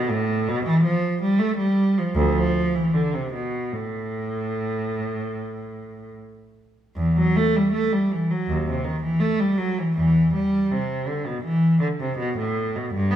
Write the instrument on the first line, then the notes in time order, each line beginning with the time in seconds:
cello
Already playing: B2
0.11 A2
0.48 B2
0.65 E3
0.83 F3
1.21 G3
1.39 A3
1.57 G3
1.98 F3
2.15 D2
2.34 F3
2.75 E3
2.94 D3
3.14 C3
3.33 B2
3.73 A2
6.96 E2
7.17 F#3
7.36 A3
7.56 G3
7.73 A3
7.92 G3
8.11 E3
8.31 F#3
8.49 D#2
8.67 C3
8.84 D#3
9.03 E3
9.20 A3
9.40 G3
9.58 F#3
9.78 E3
9.95 E2 E3
10.33 G3
10.70 C3
11.07 D3
11.26 B2
11.43 E3
11.80 D3
12.00 C3
12.18 B2
12.38 A2
12.75 B2
12.94 G2
13.11 B3